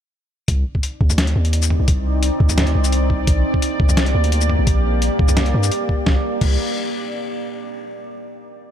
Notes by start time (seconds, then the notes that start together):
0.48 C2 C4 D#4 D5, kick, closed hi-hat
0.75 kick
0.83 closed hi-hat
1.01 D2, kick
1.10 mid tom, shaker
1.18 snare, closed hi-hat
1.27 closed hi-hat
1.36 D#2
1.45 closed hi-hat
1.53 closed hi-hat
1.62 shaker
1.70 mid tom
1.80 C2
1.88 kick, closed hi-hat
2.23 closed hi-hat
2.40 D2, kick
2.49 mid tom, shaker
2.58 snare, closed hi-hat, mid tom
2.61 mid tom
2.63 closed hi-hat, mid tom
2.75 C2
2.84 closed hi-hat, shaker
2.92 closed hi-hat
3.10 kick
3.27 A#1 A#3 G4, kick, closed hi-hat
3.54 kick
3.62 closed hi-hat
3.80 C2, kick
3.89 mid tom, shaker
3.97 snare, closed hi-hat
4.06 closed hi-hat
4.15 D2
4.24 closed hi-hat
4.32 closed hi-hat
4.41 shaker
4.50 mid tom
4.59 A#1
4.67 kick, closed hi-hat
5.02 closed hi-hat
5.19 C2, kick
5.28 mid tom, shaker
5.37 snare, closed hi-hat, mid tom
5.46 closed hi-hat
5.54 G2
5.63 closed hi-hat, shaker
5.72 closed hi-hat
5.89 kick
6.06 C2, kick, snare
6.41 C2, kick, crash